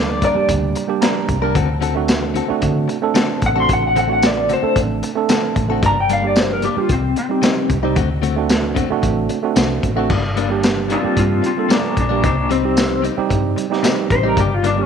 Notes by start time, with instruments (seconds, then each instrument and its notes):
Already playing: fingered electric bass D2, tine electric piano G3 A#3 D4 A4
0.00 clean electric guitar D5
0.09 muted clean electric guitar stroke
0.22 clean electric guitar G3 A#3 D4 A#4 D5, kick, closed hi-hat
0.35 tine electric piano G3 A#3 D4 G4, muted fingered electric bass stroke, muted clean electric guitar stroke
0.48 fingered electric bass D2, muted clean electric guitar stroke, kick, closed hi-hat
0.75 muted clean electric guitar stroke, closed hi-hat
0.88 tine electric piano G3 A#3 D4 G4
1.02 clean electric guitar G3 A#3 D4 A#4, tine electric piano A#5, snare, closed hi-hat, tambourine
1.16 muted clean electric guitar stroke
1.28 fingered electric bass C2, muted clean electric guitar stroke, kick, closed hi-hat
1.42 tine electric piano G3 A#3 D4 A#4, clean electric guitar A#3 D4 A#4
1.55 fingered electric bass D2, clean electric guitar D3 C4 F#4 A4, kick, closed hi-hat
1.69 muted clean electric guitar stroke
1.81 clean electric guitar D3 C4 F#4 A4, closed hi-hat
1.95 tine electric piano A3 C4 D4 F#4, muted clean electric guitar stroke
2.08 snare, closed hi-hat, tambourine
2.23 muted clean electric guitar stroke
2.34 clean electric guitar D3 C4 F#4 A4, closed hi-hat
2.48 tine electric piano A3 C4 D4 F#4, muted clean electric guitar stroke, muted fingered electric bass stroke
2.62 fingered electric bass D3, muted clean electric guitar stroke, kick, closed hi-hat
2.88 muted clean electric guitar stroke, closed hi-hat
3.02 tine electric piano A3 C4 D4 A4
3.14 clean electric guitar D3 C4 F#4 A4, snare, closed hi-hat, tambourine
3.30 muted clean electric guitar stroke
3.42 fingered electric bass A1, muted clean electric guitar stroke, kick, closed hi-hat
3.46 clean electric guitar F#5
3.54 tine electric piano A3 C4 D4 F#4, clean electric guitar C4 F#4 A4
3.60 clean electric guitar C6
3.69 fingered electric bass A1, kick, closed hi-hat
3.73 clean electric guitar F#5
3.83 muted clean electric guitar stroke
3.87 clean electric guitar F#5
3.96 clean electric guitar D3 C4 F#4 A4 F#5, closed hi-hat
4.08 tine electric piano A3 C4 D4 F#4, muted clean electric guitar stroke
4.13 clean electric guitar F#5
4.22 clean electric guitar D5, snare, closed hi-hat, tambourine
4.37 muted clean electric guitar stroke
4.49 clean electric guitar D3 C4 F#4 A4, closed hi-hat
4.53 clean electric guitar C5
4.62 tine electric piano A3 C4 D4 A4, muted fingered electric bass stroke, muted clean electric guitar stroke
4.75 fingered electric bass A1, muted clean electric guitar stroke, kick, closed hi-hat
5.03 muted clean electric guitar stroke, closed hi-hat
5.15 tine electric piano A3 C4 D4 A4
5.29 clean electric guitar D3 C4 F#4 A4, snare, closed hi-hat, tambourine
5.43 muted clean electric guitar stroke
5.56 fingered electric bass A1, muted clean electric guitar stroke, kick, closed hi-hat
5.69 tine electric piano A3 C4 D4 F#4, clean electric guitar C4 F#4 A4
5.82 fingered electric bass G1, clean electric guitar G2 G3 A#3 D4 A#5, kick, closed hi-hat
5.97 clean electric guitar G5, muted clean electric guitar stroke
6.09 clean electric guitar G2 G3 A#3 D4 F5, closed hi-hat
6.23 tine electric piano G3 A#3 D4 G4, muted clean electric guitar stroke
6.27 clean electric guitar D5
6.36 clean electric guitar C5, snare, closed hi-hat, tambourine
6.51 clean electric guitar A#4, muted clean electric guitar stroke
6.62 clean electric guitar G2 G3 A#3 D4 G4, closed hi-hat
6.76 tine electric piano G3 A#3 D4 G4, clean electric guitar F4, muted fingered electric bass stroke, muted clean electric guitar stroke
6.89 fingered electric bass C2, clean electric guitar C4, muted clean electric guitar stroke, kick, closed hi-hat
7.16 clean electric guitar C4, muted clean electric guitar stroke, closed hi-hat
7.29 tine electric piano G3 C4 D#4 G4
7.42 clean electric guitar C3 G3 C4 D#4, snare, closed hi-hat, tambourine
7.56 muted clean electric guitar stroke
7.69 fingered electric bass C2, muted clean electric guitar stroke, kick, closed hi-hat
7.83 tine electric piano G3 C4 D#4 G4, clean electric guitar G3 C4 D#4
7.95 fingered electric bass D2, clean electric guitar D3 A3 C4 F#4, kick, closed hi-hat
8.10 muted clean electric guitar stroke
8.22 clean electric guitar D3 A3 C4 F#4, closed hi-hat
8.36 tine electric piano A3 C4 D4 F#4, muted clean electric guitar stroke
8.49 snare, closed hi-hat, tambourine
8.63 muted clean electric guitar stroke
8.75 clean electric guitar D3 A3 C4 F#4, kick, closed hi-hat
8.89 tine electric piano A3 C4 D4 F#4, muted clean electric guitar stroke, muted fingered electric bass stroke
9.02 fingered electric bass A1, muted clean electric guitar stroke, kick, closed hi-hat
9.29 muted clean electric guitar stroke, closed hi-hat
9.43 tine electric piano A3 C4 D4 F#4
9.56 fingered electric bass C2, clean electric guitar D3 A3 C4 F#4, snare, closed hi-hat, tambourine
9.70 muted clean electric guitar stroke
9.83 fingered electric bass A1, muted clean electric guitar stroke, kick, closed hi-hat
9.96 tine electric piano A3 C4 D4 F#4, clean electric guitar A3 C4 F#4
10.10 fingered electric bass G1, clean electric guitar G2 G3 A#3 D4, kick, crash
10.23 muted clean electric guitar stroke
10.36 clean electric guitar G2 G3 A#3 D4, closed hi-hat
10.50 tine electric piano G3 A#3 D4 G4, muted clean electric guitar stroke
10.63 snare, closed hi-hat, tambourine
10.77 muted clean electric guitar stroke
10.88 clean electric guitar G2 G3 A#3 C4 D4, closed hi-hat
10.93 clean electric guitar F4
11.03 tine electric piano G3 A#3 D4 G4, muted clean electric guitar stroke, muted fingered electric bass stroke
11.16 fingered electric bass G2, clean electric guitar C4, muted clean electric guitar stroke, kick, closed hi-hat
11.20 clean electric guitar F4
11.42 clean electric guitar C4, muted clean electric guitar stroke, closed hi-hat
11.47 clean electric guitar F4
11.57 tine electric piano G3 A#3 D4 A4
11.69 clean electric guitar G2 G3 A#3 D4, snare, closed hi-hat, tambourine
11.83 muted clean electric guitar stroke
11.95 fingered electric bass A#1, clean electric guitar A#3, muted clean electric guitar stroke, kick, closed hi-hat
12.00 clean electric guitar D4
12.09 tine electric piano G3 A#3 D4 G4, clean electric guitar G3 A#3 D4
12.22 fingered electric bass C2, clean electric guitar C3 G3 A#3 C4 D4 D#4, kick, closed hi-hat
12.37 muted clean electric guitar stroke
12.50 clean electric guitar C3 G3 C4 D#4, closed hi-hat
12.63 tine electric piano G3 C4 D#4 G4, muted clean electric guitar stroke
12.77 snare, closed hi-hat, tambourine
12.91 muted clean electric guitar stroke
13.02 clean electric guitar C3 G3 C4 D#4, closed hi-hat
13.17 tine electric piano G3 C4 D#4 G4, muted clean electric guitar stroke, muted fingered electric bass stroke
13.29 fingered electric bass G2, muted clean electric guitar stroke, kick, closed hi-hat
13.56 muted clean electric guitar stroke, closed hi-hat
13.70 tine electric piano G3 C4 D#4 G4, snare
13.83 clean electric guitar C3 G3 C4 D#4, snare, closed hi-hat, tambourine
13.97 muted clean electric guitar stroke
14.10 fingered electric bass A1, clean electric guitar C5, muted clean electric guitar stroke, kick, closed hi-hat
14.23 tine electric piano G3 C4 D#4 G4, clean electric guitar G3 C4 D#4
14.27 clean electric guitar A#4
14.37 fingered electric bass G1, clean electric guitar G2 G3 A#3 D4 G4, kick, closed hi-hat
14.50 clean electric guitar F4, muted clean electric guitar stroke
14.63 clean electric guitar G2 G3 A#3 D4, closed hi-hat
14.77 tine electric piano G3 A#3 D4 G4, clean electric guitar C#4, muted clean electric guitar stroke